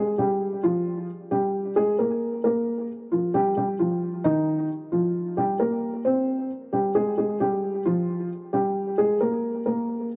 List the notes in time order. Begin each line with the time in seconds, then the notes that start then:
Already playing: G#3 G#4
0.18 G3 G4
0.63 F3 F4
1.31 G3 G4
1.76 G#3 G#4
1.99 A#3 A#4
2.44 A#3 A#4
3.12 F3 F4
3.34 G3 G4
3.57 G3 G4
3.79 F3 F4
4.24 D#3 D#4
4.92 F3 F4
5.37 G3 G4
5.60 A#3 A#4
6.05 C4 C5
6.73 G3 G4
6.95 G#3 G#4
7.18 G#3 G#4
7.40 G3 G4
7.85 F3 F4
8.53 G3 G4
8.98 G#3 G#4
9.21 A#3 A#4
9.66 A#3 A#4